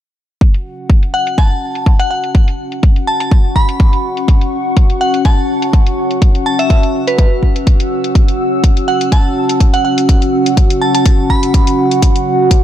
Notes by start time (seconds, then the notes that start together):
0.41 C#4 F#4 F#5, kick, closed hi-hat
0.54 closed hi-hat
0.73 F#4
0.90 kick, closed hi-hat
1.03 closed hi-hat
1.14 F#5
1.27 closed hi-hat
1.38 A5, kick, closed hi-hat
1.44 F#5
1.75 closed hi-hat
1.86 kick, closed hi-hat
1.99 F#5, closed hi-hat
2.11 F#5
2.24 closed hi-hat
2.35 kick, closed hi-hat
2.48 closed hi-hat
2.54 C#6
2.72 closed hi-hat
2.83 kick, closed hi-hat
2.96 closed hi-hat
3.07 A5
3.20 A5, closed hi-hat
3.31 kick, closed hi-hat
3.56 B5, kick
3.69 closed hi-hat
3.80 kick, closed hi-hat
3.93 closed hi-hat
4.17 closed hi-hat
4.28 kick, closed hi-hat
4.41 closed hi-hat
4.77 kick, closed hi-hat
4.90 closed hi-hat
5.01 F#5
5.14 closed hi-hat
5.25 A5, kick, closed hi-hat
5.62 closed hi-hat
5.73 kick, closed hi-hat
5.87 closed hi-hat
6.11 closed hi-hat
6.22 kick, closed hi-hat
6.35 closed hi-hat
6.41 E6
6.46 A5
6.59 E5, closed hi-hat
6.70 E5, kick, closed hi-hat
6.83 closed hi-hat
7.08 B4, closed hi-hat
7.18 B4, kick, closed hi-hat
7.43 kick
7.56 closed hi-hat
7.67 kick, closed hi-hat
7.80 closed hi-hat
8.04 closed hi-hat
8.15 F#5, kick, closed hi-hat
8.28 closed hi-hat
8.64 kick, closed hi-hat
8.77 closed hi-hat
8.88 F#5
9.01 closed hi-hat
9.12 A5, kick, closed hi-hat
9.49 closed hi-hat
9.60 kick, closed hi-hat
9.74 F#5, closed hi-hat
9.85 F#5
9.98 closed hi-hat
10.09 kick, closed hi-hat
10.22 closed hi-hat
10.28 C#6
10.46 closed hi-hat
10.57 kick, closed hi-hat
10.70 closed hi-hat
10.82 A5
10.95 A5, closed hi-hat
11.06 kick, closed hi-hat
11.30 B5, kick
11.43 closed hi-hat
11.54 kick, closed hi-hat
11.67 closed hi-hat
11.91 closed hi-hat
12.02 kick, closed hi-hat
12.16 closed hi-hat
12.51 kick, closed hi-hat